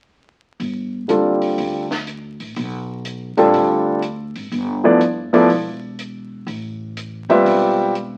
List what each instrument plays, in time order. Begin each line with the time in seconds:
0.60 upright bass G1, open hi-hat
1.08 upright bass F#1, grand piano D3 G3 C4 F4 A4, closed hi-hat
1.42 open hi-hat
1.58 upright bass D2, open hi-hat
1.91 snare
2.07 closed hi-hat
2.40 upright bass A1, open hi-hat
2.56 upright bass B1, open hi-hat
3.05 closed hi-hat
3.37 upright bass A1, grand piano D3 G3 C4 F4 A4, open hi-hat
3.54 upright bass D2, open hi-hat
4.02 closed hi-hat
4.36 upright bass G#1, open hi-hat
4.52 upright bass G1, open hi-hat
4.84 grand piano F3 B3 E4 A4 D5
5.01 closed hi-hat
5.33 grand piano F3 B3 E4 A4 D5, muted upright bass stroke, open hi-hat
5.49 upright bass E1, open hi-hat
5.99 closed hi-hat
6.47 upright bass A1, open hi-hat
6.97 closed hi-hat
7.29 upright bass F#1, grand piano G3 C4 F4 B4 E5, open hi-hat
7.45 upright bass E1, open hi-hat
7.95 closed hi-hat